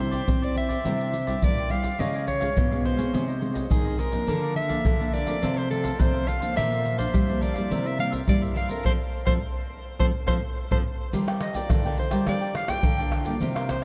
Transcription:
Already playing: C3
0.00 G3 D4 E4 C5
0.11 G4 C5 D5, pandeiro, maracas, surdo
0.28 G3 C4 D4 E4, pandeiro, maracas, surdo
0.42 G4 C5 D5, pandeiro, maracas
0.54 E4 G4 C5 D5 E5, pandeiro
0.69 G4 C5 D5, pandeiro, maracas, surdo
0.84 C3 G3 D4 E4 G4 C5 D5, pandeiro, maracas, surdo
1.00 G4 C5 D5, pandeiro, maracas
1.13 pandeiro, maracas
1.27 G3 D4 E4 G4 C5 D5, pandeiro, maracas, surdo
1.42 A#2 G3 D5, pandeiro, maracas, surdo
1.57 G4 C5 D5, pandeiro, maracas
1.70 G3 D4 E4 G4 C5 D5 F5, pandeiro
1.84 G4 C5 D5, pandeiro, maracas, surdo
1.99 C#3 G#3 C#4 F4 G#4 C#5 D#5 F5, pandeiro, maracas, surdo
2.14 G#4 C#5 F5, pandeiro, maracas
2.27 C#5, muted cavaquinho stroke, pandeiro, maracas, surdo
2.40 G#3 C#4 F4 G#4 C#5 F5, pandeiro, maracas, surdo
2.57 G#2 B2, pandeiro, maracas, surdo
2.71 G#3 C#4 F4 G#4 C#5 F5, pandeiro, maracas
2.84 F4 G#4 C5 C#5 F5, pandeiro
2.97 G#3 C4 D#4 G#4 C#5 F5, pandeiro, maracas, surdo
3.13 C3 G#4 C5 D#5, pandeiro, maracas, surdo
3.28 C5 D#5, pandeiro, maracas
3.41 G#3 C4 D#4, pandeiro
3.54 C5 D#5, pandeiro, maracas, surdo
3.71 C3 D#3 G#3 C4 D#4 G#4, pandeiro, maracas, surdo
3.85 C5 D#5, pandeiro, maracas
3.98 G#4 A#4 C5 D#5, pandeiro, maracas
4.12 F3 A#3 D4 C5 D#5, pandeiro, maracas, surdo
4.27 D3 D4 A#4 D5 F5, pandeiro, maracas, surdo
4.42 A#4 D5 F5, pandeiro, maracas
4.56 E5, muted cavaquinho stroke, pandeiro
4.69 F3 A#3 D4 A#4 D5 F5, pandeiro, maracas, surdo
4.85 D3, pandeiro, maracas, surdo
4.99 F3 A#3 D4 A#4 D5 F5, pandeiro, maracas
5.13 D4 A#4 D5 F5, pandeiro
5.26 F3 A3 C4 A#4 D5 F5, pandeiro, maracas, surdo
5.42 C3 F4 A4 C5 F5, pandeiro, maracas, surdo
5.57 A4 C5 F5, pandeiro, maracas
5.70 F3 A3 C4 A4, pandeiro, maracas
5.83 A4 C5 F5, pandeiro, maracas, surdo
5.99 C3 F3 A3 C4 C5, pandeiro, maracas, surdo
6.13 A4 C5 F5, pandeiro, maracas
6.27 F4 A4 C5 F5, pandeiro, maracas
6.40 F3 A#3 D4 A4 C5 F5, pandeiro, maracas, surdo
6.56 A#2 D4 A#4 D5 E5 F5, pandeiro, maracas, surdo
6.70 A#4 D5 F5, pandeiro, maracas
6.84 muted cavaquinho stroke, pandeiro, maracas
6.97 F3 A#3 D4 A#4 C5 D5 F5, pandeiro, maracas, surdo
7.14 F2 G3, pandeiro, maracas, surdo
7.28 F3 A#3 D4 A#4 D5 F5, pandeiro, maracas
7.41 D4 A#4 D5 F5, pandeiro, maracas
7.54 G3 A#3 E4 A#4 D5 F5, pandeiro, maracas, surdo
7.70 C3 E4 A#4 C5 E5, pandeiro, maracas, surdo
7.84 A#4 C5 E5, pandeiro, maracas
7.99 G3 A#3 E4 F5, pandeiro
8.11 A#4 C5 E5, pandeiro, maracas, surdo
8.28 G2 G3 A#3 E4 D5, pandeiro, maracas, surdo
8.41 A#4 C5 E5, pandeiro, maracas
8.54 E4 A#4 C5 E5 F5, pandeiro
8.68 C4 F4 A4 A#4 C5 E5, pandeiro, maracas, surdo
8.84 F3 A3 C4 A4 C5 F5, surdo
9.25 F3 A3 C4 A4 C5 F5, surdo
9.99 F3 A3 C4 A4 C5 F5, surdo
10.27 F3 A3 C4 A4 C5 F5, surdo
10.71 F3 A3 C4 A4 C5 F5, surdo
11.13 G3 F4 A#4 D5 G5, pandeiro, maracas, surdo
11.28 A#4 D5 G5, pandeiro, tamborim, maracas
11.41 D#5, pandeiro, tamborim, maracas
11.54 D4 F4 A#4 D5 G5, pandeiro, maracas, surdo
11.70 D3 F4 A#4 D5 G5, pandeiro, tamborim, maracas, surdo
11.84 D3 D4 F4 A#4 D5 G5, pandeiro, maracas
11.98 C5, muted cavaquinho stroke, pandeiro
12.11 G3 A#4 D5 G5, pandeiro, tamborim, maracas, surdo
12.26 G3 D4 F4 A#4 D5 G5, pandeiro, tamborim, maracas, surdo
12.41 A#4 D5 G5, pandeiro, maracas
12.55 F5, muted cavaquinho stroke, pandeiro, tamborim
12.68 D4 F4 A#4 D5 G5, pandeiro, tamborim, maracas, surdo
12.83 D3, pandeiro, maracas, surdo
12.98 D4 F4 A#4 D5 G5, pandeiro, maracas
13.11 F4 A#4 D5 G5, pandeiro, tamborim
13.25 G3 A#3 F4 A#4 D5 G5, pandeiro, maracas, surdo
13.41 C3 F4 A#4 C5 F5, pandeiro, maracas, surdo
13.55 A#4 C5 F5, pandeiro, tamborim, maracas
13.69 C5, pandeiro, tamborim, maracas, surdo

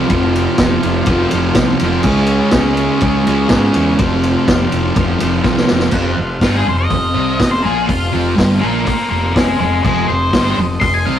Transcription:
Already playing: F3 A4 C5 F5
0.07 F1 F2 C3, kick, ride
0.11 F3
0.36 ride
0.58 F1 F2 C3, kick, snare, ride
0.62 F3
0.83 F1, ride
1.06 F1 F2 C3 F3, kick, ride
1.31 F1 F3, ride
1.35 C3
1.55 C2 F2 C3, kick, snare, ride
1.59 F3
1.80 F1 F3, ride
1.85 C3
2.01 C#2 C#3 G#4, kick, crash
2.05 G#3 C#4 C#5 F5
2.27 ride
2.51 C#2 C#3 G#3, kick, snare, ride
2.56 C#4
2.77 ride
3.00 C#2 C#3 G#3 C#4, kick, ride
3.25 C#2 G#3 C#4, ride
3.49 G#2 C#3 G#3 C#4, kick, snare, ride
3.74 E2 G#3 C#4, ride
3.97 F1 F2 C3 A4 C5, kick, ride
4.02 F3 F5
4.23 ride
4.47 F1 F2 C3 F3, kick, snare, ride
4.72 F1, ride
4.95 F1 F2 C3 F3, kick, ride
5.19 F1 F3, ride
5.23 C3
5.44 C2 F2 C3 F3, kick, snare
5.57 snare
5.67 F1 C3 F3, snare
5.79 snare
5.90 F1 F2 F3 A4 C5, kick, crash
5.95 F5
6.17 F1 F2
6.41 G1 G2 G3 F4, kick, snare, open hi-hat
6.52 G#4
6.66 F1 F2 C5
6.78 D#5
6.90 F1 F2, kick, open hi-hat
7.14 C2 C3 C4
7.40 F1 F2, kick, snare, open hi-hat
7.51 C5
7.63 A#1 A#2 A#3 G#4
7.86 F1 F2 F4, kick, open hi-hat
8.12 F1 F2 F3
8.36 G1 G2 G3, kick, snare, open hi-hat
8.59 A#1 A#2 A#3 F4 D5
8.85 F4 D5, muted fingered electric bass stroke, muted distorted electric guitar stroke, kick, open hi-hat
9.10 F1 F2 F4 D5
9.36 F1 F2 D#4 C5, kick, snare, open hi-hat
9.60 F1 F2 D#4 C5
9.83 F1 F2 F3 D#4 A4 C5 D#5, kick, crash
10.08 F1 F2 C5
10.33 G1 G2 G3, kick, snare, open hi-hat
10.57 F1 F2
10.80 F1 F2 C6, kick, open hi-hat
10.94 G#5
11.06 C2 C3 C4 F5

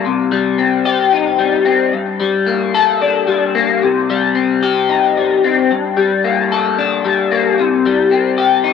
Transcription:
Already playing: G3
0.06 C3
0.32 G3
0.58 C4
0.85 G4
1.13 D#4
1.39 G3
1.65 C4
1.93 G2
2.20 G3
2.47 A#3
2.74 A4
3.02 D4
3.27 G3
3.55 A#3
3.83 C3
4.10 G3
4.35 C4
4.63 G4
4.89 D#4
5.17 G3
5.44 C4
5.71 G2
5.97 G3
6.24 A#3
6.52 A4
6.78 D4
7.05 G3
7.32 A#3
7.59 C3
7.86 G3
8.11 C4
8.38 G4
8.64 D#4

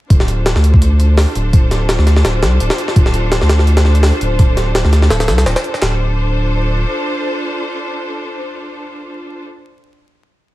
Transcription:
0.10 D1 D4 F4 A4 C5, kick, closed hi-hat
0.20 snare
0.28 closed hi-hat
0.46 snare, closed hi-hat
0.56 D2, snare
0.64 closed hi-hat
0.74 kick
0.82 closed hi-hat
1.00 closed hi-hat
1.17 snare, open hi-hat
1.35 D1, closed hi-hat
1.53 kick, closed hi-hat
1.71 snare, closed hi-hat
1.89 snare, closed hi-hat
1.98 D2, snare
2.07 snare, closed hi-hat
2.17 snare
2.25 D1, snare, closed hi-hat
2.42 C2, snare, closed hi-hat
2.60 D1, closed hi-hat
2.70 snare
2.78 closed hi-hat
2.88 snare
2.96 D1, kick, closed hi-hat
3.06 snare
3.14 closed hi-hat
3.32 snare, closed hi-hat
3.42 D2, snare
3.49 snare, closed hi-hat
3.59 snare
3.67 closed hi-hat
3.77 snare, closed hi-hat
3.85 snare
3.95 closed hi-hat
4.03 snare, open hi-hat
4.21 D1, closed hi-hat
4.39 kick, closed hi-hat
4.57 snare, closed hi-hat
4.75 snare, closed hi-hat
4.85 D2, snare
4.93 snare, closed hi-hat
5.02 snare
5.10 D1, snare, closed hi-hat
5.20 snare, closed hi-hat
5.28 C2, snare, closed hi-hat
5.38 snare, closed hi-hat
5.46 D1, snare, closed hi-hat
5.56 snare, closed hi-hat
5.64 closed hi-hat
5.74 snare
5.82 D1 D4 F4 A4 C5, snare, clap

